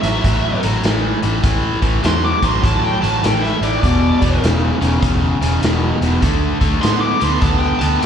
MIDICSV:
0, 0, Header, 1, 5, 480
1, 0, Start_track
1, 0, Tempo, 597610
1, 1156, Time_signature, 4, 2, 24, 8
1, 6472, End_track
2, 0, Start_track
2, 0, Title_t, "Lead electric guitar"
2, 0, Program_c, 0, 29
2, 16, Note_on_c, 0, 76, 97
2, 492, Note_off_c, 0, 76, 0
2, 1650, Note_on_c, 0, 84, 97
2, 1803, Note_off_c, 0, 84, 0
2, 1803, Note_on_c, 0, 86, 73
2, 1954, Note_off_c, 0, 86, 0
2, 1965, Note_on_c, 0, 84, 72
2, 2116, Note_off_c, 0, 84, 0
2, 2127, Note_on_c, 0, 81, 93
2, 2278, Note_off_c, 0, 81, 0
2, 2278, Note_on_c, 0, 79, 83
2, 2413, Note_off_c, 0, 79, 0
2, 2416, Note_on_c, 0, 81, 75
2, 2581, Note_off_c, 0, 81, 0
2, 2609, Note_on_c, 0, 79, 79
2, 2748, Note_on_c, 0, 76, 85
2, 2758, Note_off_c, 0, 79, 0
2, 2914, Note_off_c, 0, 76, 0
2, 2914, Note_on_c, 0, 74, 76
2, 3034, Note_off_c, 0, 74, 0
2, 3044, Note_on_c, 0, 74, 94
2, 3525, Note_off_c, 0, 74, 0
2, 5474, Note_on_c, 0, 84, 96
2, 5623, Note_off_c, 0, 84, 0
2, 5623, Note_on_c, 0, 86, 67
2, 5801, Note_off_c, 0, 86, 0
2, 5801, Note_on_c, 0, 84, 69
2, 5947, Note_on_c, 0, 81, 95
2, 5955, Note_off_c, 0, 84, 0
2, 6093, Note_off_c, 0, 81, 0
2, 6097, Note_on_c, 0, 79, 74
2, 6255, Note_off_c, 0, 79, 0
2, 6255, Note_on_c, 0, 81, 86
2, 6422, Note_off_c, 0, 81, 0
2, 6428, Note_on_c, 0, 79, 74
2, 6472, Note_off_c, 0, 79, 0
2, 6472, End_track
3, 0, Start_track
3, 0, Title_t, "Overdriven electric guitar"
3, 0, Program_c, 1, 29
3, 28, Note_on_c, 1, 45, 64
3, 28, Note_on_c, 1, 54, 76
3, 180, Note_off_c, 1, 45, 0
3, 180, Note_off_c, 1, 54, 0
3, 198, Note_on_c, 1, 45, 82
3, 204, Note_on_c, 1, 54, 87
3, 478, Note_off_c, 1, 45, 0
3, 481, Note_off_c, 1, 54, 0
3, 504, Note_on_c, 1, 45, 76
3, 507, Note_on_c, 1, 54, 80
3, 658, Note_off_c, 1, 45, 0
3, 659, Note_off_c, 1, 54, 0
3, 671, Note_on_c, 1, 45, 76
3, 679, Note_on_c, 1, 52, 87
3, 954, Note_off_c, 1, 45, 0
3, 958, Note_off_c, 1, 52, 0
3, 982, Note_on_c, 1, 45, 65
3, 983, Note_on_c, 1, 52, 68
3, 1136, Note_off_c, 1, 45, 0
3, 1137, Note_off_c, 1, 52, 0
3, 1148, Note_on_c, 1, 45, 83
3, 1152, Note_on_c, 1, 52, 85
3, 1432, Note_off_c, 1, 45, 0
3, 1434, Note_off_c, 1, 52, 0
3, 1459, Note_on_c, 1, 45, 63
3, 1461, Note_on_c, 1, 52, 68
3, 1615, Note_off_c, 1, 45, 0
3, 1615, Note_off_c, 1, 52, 0
3, 1627, Note_on_c, 1, 45, 81
3, 1629, Note_on_c, 1, 54, 80
3, 1912, Note_off_c, 1, 45, 0
3, 1912, Note_off_c, 1, 54, 0
3, 1946, Note_on_c, 1, 45, 74
3, 1946, Note_on_c, 1, 54, 78
3, 2096, Note_off_c, 1, 45, 0
3, 2098, Note_off_c, 1, 54, 0
3, 2105, Note_on_c, 1, 45, 81
3, 2108, Note_on_c, 1, 54, 89
3, 2391, Note_off_c, 1, 45, 0
3, 2392, Note_off_c, 1, 54, 0
3, 2417, Note_on_c, 1, 45, 80
3, 2421, Note_on_c, 1, 54, 88
3, 2573, Note_off_c, 1, 45, 0
3, 2575, Note_off_c, 1, 54, 0
3, 2589, Note_on_c, 1, 45, 69
3, 2594, Note_on_c, 1, 52, 83
3, 2873, Note_off_c, 1, 45, 0
3, 2876, Note_off_c, 1, 52, 0
3, 2907, Note_on_c, 1, 45, 54
3, 2915, Note_on_c, 1, 52, 74
3, 3059, Note_off_c, 1, 45, 0
3, 3062, Note_off_c, 1, 52, 0
3, 3081, Note_on_c, 1, 40, 77
3, 3084, Note_on_c, 1, 47, 94
3, 3359, Note_off_c, 1, 40, 0
3, 3360, Note_off_c, 1, 47, 0
3, 3381, Note_on_c, 1, 40, 63
3, 3382, Note_on_c, 1, 47, 78
3, 3535, Note_off_c, 1, 40, 0
3, 3536, Note_off_c, 1, 47, 0
3, 3550, Note_on_c, 1, 40, 73
3, 3555, Note_on_c, 1, 49, 90
3, 3834, Note_off_c, 1, 40, 0
3, 3836, Note_off_c, 1, 49, 0
3, 3861, Note_on_c, 1, 40, 64
3, 3861, Note_on_c, 1, 49, 77
3, 4009, Note_off_c, 1, 40, 0
3, 4013, Note_off_c, 1, 49, 0
3, 4019, Note_on_c, 1, 40, 66
3, 4022, Note_on_c, 1, 49, 90
3, 4308, Note_off_c, 1, 40, 0
3, 4310, Note_off_c, 1, 49, 0
3, 4342, Note_on_c, 1, 40, 83
3, 4348, Note_on_c, 1, 49, 82
3, 4497, Note_off_c, 1, 40, 0
3, 4500, Note_off_c, 1, 49, 0
3, 4513, Note_on_c, 1, 40, 81
3, 4521, Note_on_c, 1, 47, 89
3, 4796, Note_off_c, 1, 40, 0
3, 4800, Note_off_c, 1, 47, 0
3, 4829, Note_on_c, 1, 40, 71
3, 4833, Note_on_c, 1, 47, 64
3, 4981, Note_off_c, 1, 40, 0
3, 4983, Note_off_c, 1, 47, 0
3, 4987, Note_on_c, 1, 50, 81
3, 4993, Note_on_c, 1, 57, 78
3, 5273, Note_off_c, 1, 50, 0
3, 5276, Note_off_c, 1, 57, 0
3, 5301, Note_on_c, 1, 50, 62
3, 5307, Note_on_c, 1, 57, 66
3, 5457, Note_off_c, 1, 50, 0
3, 5460, Note_off_c, 1, 57, 0
3, 5469, Note_on_c, 1, 50, 68
3, 5474, Note_on_c, 1, 59, 79
3, 5755, Note_off_c, 1, 50, 0
3, 5757, Note_off_c, 1, 59, 0
3, 5777, Note_on_c, 1, 50, 77
3, 5784, Note_on_c, 1, 59, 73
3, 5935, Note_off_c, 1, 50, 0
3, 5939, Note_off_c, 1, 59, 0
3, 5952, Note_on_c, 1, 50, 74
3, 5956, Note_on_c, 1, 59, 87
3, 6236, Note_off_c, 1, 50, 0
3, 6238, Note_off_c, 1, 59, 0
3, 6271, Note_on_c, 1, 50, 74
3, 6273, Note_on_c, 1, 59, 88
3, 6423, Note_off_c, 1, 50, 0
3, 6424, Note_off_c, 1, 59, 0
3, 6439, Note_on_c, 1, 50, 74
3, 6444, Note_on_c, 1, 57, 86
3, 6472, Note_off_c, 1, 50, 0
3, 6472, Note_off_c, 1, 57, 0
3, 6472, End_track
4, 0, Start_track
4, 0, Title_t, "Picked electric bass"
4, 0, Program_c, 2, 34
4, 25, Note_on_c, 2, 33, 83
4, 151, Note_off_c, 2, 33, 0
4, 198, Note_on_c, 2, 33, 100
4, 428, Note_off_c, 2, 33, 0
4, 516, Note_on_c, 2, 33, 89
4, 638, Note_off_c, 2, 33, 0
4, 680, Note_on_c, 2, 33, 91
4, 909, Note_off_c, 2, 33, 0
4, 994, Note_on_c, 2, 33, 79
4, 1116, Note_off_c, 2, 33, 0
4, 1156, Note_on_c, 2, 33, 78
4, 1386, Note_off_c, 2, 33, 0
4, 1465, Note_on_c, 2, 33, 76
4, 1590, Note_off_c, 2, 33, 0
4, 1644, Note_on_c, 2, 40, 84
4, 1871, Note_off_c, 2, 40, 0
4, 1956, Note_on_c, 2, 33, 76
4, 2077, Note_off_c, 2, 33, 0
4, 2120, Note_on_c, 2, 33, 95
4, 2349, Note_off_c, 2, 33, 0
4, 2436, Note_on_c, 2, 33, 85
4, 2557, Note_off_c, 2, 33, 0
4, 2593, Note_on_c, 2, 33, 77
4, 2824, Note_off_c, 2, 33, 0
4, 2902, Note_on_c, 2, 33, 76
4, 3028, Note_off_c, 2, 33, 0
4, 3081, Note_on_c, 2, 28, 83
4, 3310, Note_off_c, 2, 28, 0
4, 3393, Note_on_c, 2, 28, 72
4, 3516, Note_off_c, 2, 28, 0
4, 3556, Note_on_c, 2, 28, 79
4, 3787, Note_off_c, 2, 28, 0
4, 3868, Note_on_c, 2, 28, 75
4, 3992, Note_off_c, 2, 28, 0
4, 4037, Note_on_c, 2, 28, 96
4, 4267, Note_off_c, 2, 28, 0
4, 4353, Note_on_c, 2, 28, 81
4, 4476, Note_off_c, 2, 28, 0
4, 4516, Note_on_c, 2, 28, 88
4, 4747, Note_off_c, 2, 28, 0
4, 4829, Note_on_c, 2, 28, 74
4, 4953, Note_off_c, 2, 28, 0
4, 5002, Note_on_c, 2, 38, 80
4, 5231, Note_off_c, 2, 38, 0
4, 5314, Note_on_c, 2, 38, 87
4, 5437, Note_off_c, 2, 38, 0
4, 5492, Note_on_c, 2, 45, 87
4, 5717, Note_off_c, 2, 45, 0
4, 5801, Note_on_c, 2, 38, 82
4, 5921, Note_off_c, 2, 38, 0
4, 5964, Note_on_c, 2, 38, 91
4, 6193, Note_off_c, 2, 38, 0
4, 6278, Note_on_c, 2, 38, 78
4, 6400, Note_off_c, 2, 38, 0
4, 6472, End_track
5, 0, Start_track
5, 0, Title_t, "Drums"
5, 27, Note_on_c, 9, 42, 73
5, 107, Note_off_c, 9, 42, 0
5, 195, Note_on_c, 9, 36, 94
5, 196, Note_on_c, 9, 42, 83
5, 276, Note_off_c, 9, 36, 0
5, 276, Note_off_c, 9, 42, 0
5, 505, Note_on_c, 9, 42, 65
5, 585, Note_off_c, 9, 42, 0
5, 671, Note_on_c, 9, 42, 78
5, 686, Note_on_c, 9, 38, 109
5, 752, Note_off_c, 9, 42, 0
5, 766, Note_off_c, 9, 38, 0
5, 985, Note_on_c, 9, 42, 60
5, 1066, Note_off_c, 9, 42, 0
5, 1153, Note_on_c, 9, 42, 80
5, 1154, Note_on_c, 9, 36, 110
5, 1233, Note_off_c, 9, 42, 0
5, 1234, Note_off_c, 9, 36, 0
5, 1464, Note_on_c, 9, 42, 61
5, 1466, Note_on_c, 9, 36, 84
5, 1544, Note_off_c, 9, 42, 0
5, 1546, Note_off_c, 9, 36, 0
5, 1637, Note_on_c, 9, 42, 74
5, 1651, Note_on_c, 9, 38, 109
5, 1717, Note_off_c, 9, 42, 0
5, 1732, Note_off_c, 9, 38, 0
5, 1948, Note_on_c, 9, 36, 85
5, 1949, Note_on_c, 9, 42, 63
5, 2028, Note_off_c, 9, 36, 0
5, 2030, Note_off_c, 9, 42, 0
5, 2117, Note_on_c, 9, 36, 108
5, 2122, Note_on_c, 9, 42, 68
5, 2198, Note_off_c, 9, 36, 0
5, 2202, Note_off_c, 9, 42, 0
5, 2440, Note_on_c, 9, 42, 63
5, 2520, Note_off_c, 9, 42, 0
5, 2601, Note_on_c, 9, 42, 86
5, 2615, Note_on_c, 9, 38, 100
5, 2681, Note_off_c, 9, 42, 0
5, 2696, Note_off_c, 9, 38, 0
5, 2770, Note_on_c, 9, 38, 34
5, 2851, Note_off_c, 9, 38, 0
5, 2914, Note_on_c, 9, 42, 65
5, 2995, Note_off_c, 9, 42, 0
5, 3078, Note_on_c, 9, 36, 93
5, 3083, Note_on_c, 9, 42, 81
5, 3158, Note_off_c, 9, 36, 0
5, 3163, Note_off_c, 9, 42, 0
5, 3389, Note_on_c, 9, 42, 67
5, 3390, Note_on_c, 9, 36, 81
5, 3470, Note_off_c, 9, 36, 0
5, 3470, Note_off_c, 9, 42, 0
5, 3564, Note_on_c, 9, 42, 75
5, 3578, Note_on_c, 9, 38, 101
5, 3644, Note_off_c, 9, 42, 0
5, 3658, Note_off_c, 9, 38, 0
5, 3873, Note_on_c, 9, 42, 75
5, 3953, Note_off_c, 9, 42, 0
5, 4036, Note_on_c, 9, 42, 86
5, 4037, Note_on_c, 9, 36, 108
5, 4116, Note_off_c, 9, 42, 0
5, 4117, Note_off_c, 9, 36, 0
5, 4357, Note_on_c, 9, 42, 69
5, 4437, Note_off_c, 9, 42, 0
5, 4520, Note_on_c, 9, 42, 91
5, 4534, Note_on_c, 9, 38, 108
5, 4600, Note_off_c, 9, 42, 0
5, 4614, Note_off_c, 9, 38, 0
5, 4835, Note_on_c, 9, 42, 58
5, 4916, Note_off_c, 9, 42, 0
5, 4999, Note_on_c, 9, 36, 92
5, 5001, Note_on_c, 9, 42, 90
5, 5080, Note_off_c, 9, 36, 0
5, 5081, Note_off_c, 9, 42, 0
5, 5311, Note_on_c, 9, 36, 80
5, 5312, Note_on_c, 9, 42, 63
5, 5391, Note_off_c, 9, 36, 0
5, 5392, Note_off_c, 9, 42, 0
5, 5484, Note_on_c, 9, 42, 81
5, 5499, Note_on_c, 9, 38, 93
5, 5565, Note_off_c, 9, 42, 0
5, 5579, Note_off_c, 9, 38, 0
5, 5794, Note_on_c, 9, 42, 62
5, 5874, Note_off_c, 9, 42, 0
5, 5957, Note_on_c, 9, 42, 72
5, 5960, Note_on_c, 9, 36, 103
5, 6037, Note_off_c, 9, 42, 0
5, 6040, Note_off_c, 9, 36, 0
5, 6274, Note_on_c, 9, 42, 64
5, 6354, Note_off_c, 9, 42, 0
5, 6446, Note_on_c, 9, 42, 87
5, 6472, Note_off_c, 9, 42, 0
5, 6472, End_track
0, 0, End_of_file